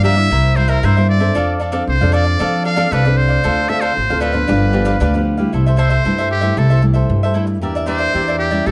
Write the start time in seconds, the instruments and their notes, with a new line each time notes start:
Already playing: upright bass G2, nylon-string guitar D3 F3 A#3 D4
0.03 cavaquinho G4 A#4 D5 F5, muted trumpet E5
0.16 nylon-string guitar G3 A#3 E4, cavaquinho A#4 D5 F5
0.31 upright bass C2, nylon-string guitar C3, cavaquinho E4 A#4 C5 E5
0.55 nylon-string guitar G3 A#3 E4, cavaquinho E4 A#4 C5 E5, muted trumpet C5
0.68 cavaquinho E4 A#4 C5 E5, muted trumpet A#4
0.83 upright bass G2, nylon-string guitar G2, cavaquinho E4 A#4 C5 E5, muted trumpet C5
0.97 nylon-string guitar G3 A#3 E4, cavaquinho A#4 C5 E5
1.09 muted trumpet D5
1.20 nylon-string guitar C4 D4 A4, cavaquinho A#4 C5 E5
1.35 upright bass F2, nylon-string guitar F3, cavaquinho D4 A4 D5 F5
1.60 cavaquinho D4 A4 D5 F5
1.72 nylon-string guitar C4 D4 A4, cavaquinho D4 A4 D5 F5
1.88 upright bass C2, nylon-string guitar C3, muted trumpet C5
2.01 upright bass F2, nylon-string guitar C4 D4 A4, cavaquinho A4 D5 F5
2.12 cavaquinho D4 A4 D5 F5, muted trumpet D5
2.25 cavaquinho A4 D5
2.39 upright bass F3, nylon-string guitar F3 C4 D4 A4, cavaquinho D4 A4 D5 F5
2.64 cavaquinho D4 A4 D5 F5, muted trumpet F5
2.76 nylon-string guitar C4 D4 A4, cavaquinho D4 A4 D5 F5
2.91 upright bass C2, nylon-string guitar C3, cavaquinho D4 A4 D5 F5, muted trumpet B4
3.05 nylon-string guitar C4 D4 A4, cavaquinho A4 D5 F5
3.17 muted trumpet C5
3.28 cavaquinho A4 D5 F5
3.43 upright bass D2, nylon-string guitar D3 C4 F4 A4, cavaquinho D4 A4 C5 F5
3.68 nylon-string guitar C4 F4 A4, cavaquinho D4 A4 C5 F5, muted trumpet E5
3.81 cavaquinho D4 A4 C5 F5, muted trumpet C5
3.97 upright bass A1, nylon-string guitar A2
4.10 upright bass D2, nylon-string guitar C4 F4 A4, cavaquinho A4 C5 F5
4.20 cavaquinho D4 A4 C5 F5, muted trumpet B4
4.32 nylon-string guitar F3 B3 D4, cavaquinho A4 C5 F5
4.47 upright bass G1, nylon-string guitar G2, cavaquinho D4 G4 B4 F5
4.73 nylon-string guitar F3 B3 D4, cavaquinho D4 G4 B4 F5
4.85 cavaquinho D4 G4 B4 F5
5.00 upright bass D2, nylon-string guitar D3, cavaquinho D4 G4 B4 F5
5.14 nylon-string guitar F3 B3 D4, cavaquinho G4 B4 F5
5.37 nylon-string guitar G3 A3 E4, cavaquinho G4 B4 F5
5.53 upright bass C2, nylon-string guitar C3, cavaquinho E4 A4 C5 E5
5.66 cavaquinho A4 C5 E5
5.77 cavaquinho E4 A4 C5 E5, muted trumpet C5
5.89 cavaquinho A4 C5 E5
6.04 nylon-string guitar G2 G3 A3 E4, upright bass G2, cavaquinho E4 A4 C5 E5
6.18 cavaquinho A4 C5 E5
6.31 muted trumpet G4
6.41 nylon-string guitar G3 A3 E4, cavaquinho A4 C5 E5
6.57 upright bass C2, nylon-string guitar C3, cavaquinho E4 A4 C5 E5, muted trumpet A4
6.70 cavaquinho A4 C5 E5
6.82 nylon-string guitar G3 A3 E4, muted cavaquinho stroke
6.94 cavaquinho A4 C5 E5
7.10 upright bass G2, nylon-string guitar G2
7.23 cavaquinho A4 C5 E5
7.34 nylon-string guitar G3 A3 E4, cavaquinho E4 A4 C5 E5
7.47 muted cavaquinho stroke
7.61 upright bass E2, nylon-string guitar E3 A#3 D4 G4, cavaquinho G4 A#4 D5 E5
7.75 cavaquinho A#4 D5 E5
7.86 nylon-string guitar A#3 D4 G4, cavaquinho G4 A#4 D5 E5, muted trumpet C5
7.98 cavaquinho A#4 D5 E5
8.14 upright bass E2, nylon-string guitar E3 A#3 D4 G4, cavaquinho G4 A#4 D5 E5
8.28 cavaquinho A#4 D5 E5
8.39 muted trumpet G4
8.51 nylon-string guitar G3 C#4 E4, cavaquinho A#4 D5 E5
8.66 upright bass A1, nylon-string guitar A2, cavaquinho G4 A4 C#5 E5, muted trumpet A4